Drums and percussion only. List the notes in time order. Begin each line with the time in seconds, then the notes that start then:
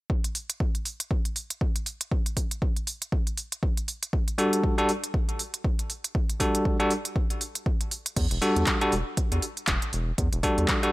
0.10 kick
0.24 closed hi-hat
0.35 open hi-hat
0.50 closed hi-hat
0.60 kick
0.75 closed hi-hat
0.85 open hi-hat
1.00 closed hi-hat
1.11 kick
1.25 closed hi-hat
1.36 open hi-hat
1.50 closed hi-hat
1.61 kick
1.76 closed hi-hat
1.86 open hi-hat
2.01 closed hi-hat
2.12 kick
2.26 closed hi-hat
2.37 kick, open hi-hat
2.51 closed hi-hat
2.62 kick
2.76 closed hi-hat
2.87 open hi-hat
3.02 closed hi-hat
3.12 kick
3.27 closed hi-hat
3.37 open hi-hat
3.52 closed hi-hat
3.63 kick
3.77 closed hi-hat
3.88 open hi-hat
4.03 closed hi-hat
4.13 kick
4.28 closed hi-hat
4.38 open hi-hat
4.53 closed hi-hat
4.64 kick
4.78 closed hi-hat
4.89 open hi-hat
5.04 closed hi-hat
5.14 kick
5.29 closed hi-hat
5.39 open hi-hat
5.54 closed hi-hat
5.64 kick
5.79 closed hi-hat
5.90 open hi-hat
6.04 closed hi-hat
6.15 kick
6.30 closed hi-hat
6.40 kick, open hi-hat
6.55 closed hi-hat
6.65 kick
6.80 closed hi-hat
6.91 open hi-hat
7.05 closed hi-hat
7.16 kick
7.30 closed hi-hat
7.41 open hi-hat
7.55 closed hi-hat
7.66 kick
7.81 closed hi-hat
7.91 open hi-hat
8.06 closed hi-hat
8.16 kick, closed hi-hat, crash
8.31 closed hi-hat
8.42 open hi-hat
8.56 closed hi-hat
8.66 kick, clap, closed hi-hat
8.81 closed hi-hat
8.92 open hi-hat
9.17 kick, closed hi-hat
9.32 closed hi-hat
9.42 open hi-hat
9.57 closed hi-hat
9.67 kick, clap, closed hi-hat
9.82 closed hi-hat
9.93 open hi-hat
10.18 kick, closed hi-hat
10.33 closed hi-hat
10.43 kick, open hi-hat
10.58 closed hi-hat
10.68 kick, clap, closed hi-hat
10.83 closed hi-hat